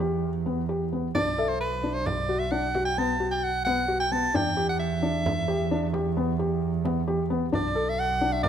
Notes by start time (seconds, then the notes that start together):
Already playing: E2
0.00 G4
0.46 B3
0.69 G4
0.93 B3
1.15 B1 D4 D5, frame drum
1.38 A4 E5
1.48 C5
1.61 B4
1.83 D4
1.94 C5
2.06 D5, frame drum
2.29 F#4
2.39 E5
2.51 D4 F#5
2.75 F#4, frame drum
2.85 G5
2.98 B3 A5, frame drum
3.20 F#4, frame drum
3.29 G5 A5
3.44 F#5, frame drum
3.65 B3 F#5, frame drum
3.88 F#4
4.00 G5
4.12 B3 A5
4.33 E2 D4 G5, frame drum
4.57 G4
4.69 F#5
4.80 E5
5.03 D4
5.26 frame drum
5.48 G4
5.71 D4
5.93 G4, frame drum
6.17 B3, frame drum
6.39 G4, frame drum
6.62 frame drum
6.85 B3, frame drum
7.08 G4
7.30 B3
7.52 B1 D4 D5, frame drum
7.75 A4
7.89 E5
7.99 F#5
8.21 D4 F#5
8.33 E5
8.43 D5, frame drum